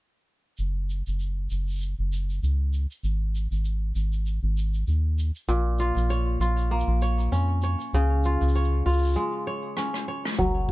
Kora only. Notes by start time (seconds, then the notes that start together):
5.49 A#2
5.80 F4
6.10 C#5
6.41 F4
6.71 A#3
7.02 C#5
7.32 C#4
7.63 C#5
7.94 C#3
8.25 F4
8.56 C#5
8.86 F4
9.16 G#3
9.47 C#5
9.78 C#4
10.08 C#5
10.39 F#3 A#4